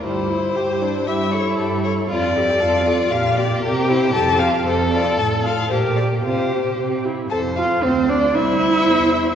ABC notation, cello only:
X:1
M:2/4
L:1/8
Q:1/4=116
K:Dm
V:1 name="Cello" clef=bass
G,,2 G,,2 | G,,2 G,,2 | F,,2 F,,2 | [K:F] B,,2 C,2 |
F,,2 F,,2 | A,,2 B,,2 | C,2 C,2 | F,,2 D,,2 |
C,,2 E,,2 |]